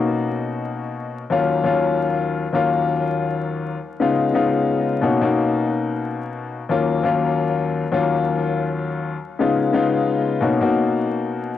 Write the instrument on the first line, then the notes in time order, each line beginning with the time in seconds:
grand piano
Already playing: B2 A#3 C#4 D#4 F#4
1.30 D#2 F#3 A#3 C#4 F4
1.64 D#2 F#3 A#3 C#4 F4
2.53 D#2 F#3 A#3 C#4 F4
4.00 C#3 G#3 B3 D#4 F4
4.33 C#3 G#3 B3 D#4 F4
5.01 B2 A#3 C#4 D#4 F#4
5.21 B2 A#3 C#4 D#4 F#4
6.69 D#2 F#3 A#3 C#4 F4
7.03 D#2 F#3 A#3 C#4 F4
7.92 D#2 F#3 A#3 C#4 F4
9.39 C#3 G#3 B3 D#4 F4
9.73 C#3 G#3 B3 D#4 F4
10.41 B2 A#3 C#4 D#4 F#4
10.61 B2 A#3 C#4 D#4 F#4